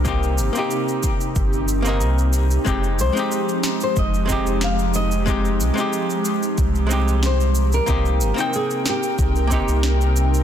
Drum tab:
SH |xxxxxxxxxxxxxxxx|xxxxxxxxxxxxxxxx|xxxxxxxxxxxxxxxx|xxxxxxxxxxxxxxxx|
SD |----------------|------o-----o---|------------o---|------o-----o---|
BD |o-----o-o-------|o-------o-o-----|o-------o-------|o-------o-o-----|